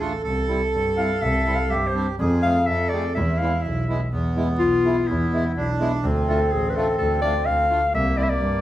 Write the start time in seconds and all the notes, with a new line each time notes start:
0.00 A3 D4 F4 A4
0.24 C2 A4
0.48 G3 C4 E4
0.73 G2
0.97 G3 C4 E4 F5
1.22 C2 E5
1.46 G3 C4 E4
1.56 F5
1.70 G2 G4 E5
1.87 C5
1.93 G3 C4 D4
2.18 F2 G#4
2.42 A3 C4 F4 F5
2.67 F2 A4 E5
2.89 A3 C4 G#4 D5
3.15 E2 E4 E5
3.39 G#3 B3 E4 F5
3.58 F5
3.62 B1 E5
3.89 G#3 B3 E4
4.12 E2 B3
4.36 G#3 B3 E4
4.59 B1 F4
4.84 G#3 B3 E4
5.08 E2 E4
5.32 G#3 B3 E4
5.56 B1 D4
5.79 G#3 B3 E4
6.03 D2 C4
6.28 A3 D4 F4 A4
6.51 A1 G#4
6.70 B4
6.76 A3 D4 F4 A4
6.98 D2 A4
7.22 A3 D4 F4 D5
7.46 D2 F5
7.68 A3 D4 F4
7.92 C2 A#3 E5
8.16 G3 C4 E4 D5
8.23 E5
8.30 D5
8.39 G2